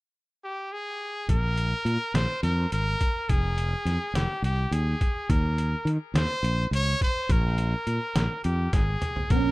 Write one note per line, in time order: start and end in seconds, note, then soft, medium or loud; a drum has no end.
0.44 0.74 G4 medium
0.72 1.29 G#4 medium
1.28 1.73 A#1 medium
1.28 2.17 A#4 medium
1.28 kick medium
1.28 closed hi-hat medium
1.58 closed hi-hat medium
1.85 1.96 A#2 medium
1.85 closed hi-hat medium
2.14 2.25 A#1 medium
2.14 2.43 C5 medium
2.14 snare medium
2.14 closed hi-hat medium
2.43 2.65 F2 medium
2.43 2.70 A#4 medium
2.43 snare soft
2.43 closed hi-hat medium
2.72 2.94 G#1 medium
2.72 3.31 A#4 medium
2.72 closed hi-hat medium
3.01 kick medium
3.01 closed hi-hat medium
3.29 3.73 F1 medium
3.29 4.17 G#4 medium
3.29 kick medium
3.29 closed hi-hat medium
3.58 closed hi-hat medium
3.85 3.97 F2 medium
3.85 snare soft
3.85 closed hi-hat medium
4.14 4.25 F1 medium
4.14 4.44 G4 medium
4.14 snare medium
4.14 closed hi-hat medium
4.42 4.65 C2 medium
4.42 4.74 G4 medium
4.42 closed hi-hat medium
4.71 4.94 D#2 medium
4.71 5.32 G#4 medium
4.71 closed hi-hat medium
5.01 kick medium
5.01 closed hi-hat medium
5.29 5.74 D#2 medium
5.29 5.89 A#4 medium
5.29 kick medium
5.29 closed hi-hat medium
5.58 closed hi-hat medium
5.85 5.97 D#3 medium
5.85 closed hi-hat medium
6.14 6.25 D#2 medium
6.14 6.69 C5 medium
6.14 snare medium
6.14 closed hi-hat medium
6.43 6.65 A#1 medium
6.43 closed hi-hat medium
6.71 6.94 C#2 medium
6.71 7.00 C#5 loud
6.71 closed hi-hat medium
7.01 7.33 C5 medium
7.01 kick medium
7.01 closed hi-hat medium
7.29 7.74 A#1 medium
7.29 8.43 A#4 medium
7.29 kick medium
7.29 closed hi-hat medium
7.58 closed hi-hat medium
7.87 7.98 A#2 medium
7.87 closed hi-hat medium
8.15 8.27 A#1 medium
8.15 snare loud
8.15 closed hi-hat medium
8.44 8.67 F2 medium
8.44 8.75 G4 medium
8.44 closed hi-hat medium
8.73 8.95 G#1 medium
8.73 9.32 G#4 medium
8.73 kick medium
8.73 snare medium
8.73 closed hi-hat medium
9.02 closed hi-hat medium
9.02 mid tom medium
9.16 floor tom medium
9.30 9.52 A#1 medium
9.30 9.52 C#4 medium
9.30 9.52 A#4 medium
9.30 kick medium
9.30 closed hi-hat medium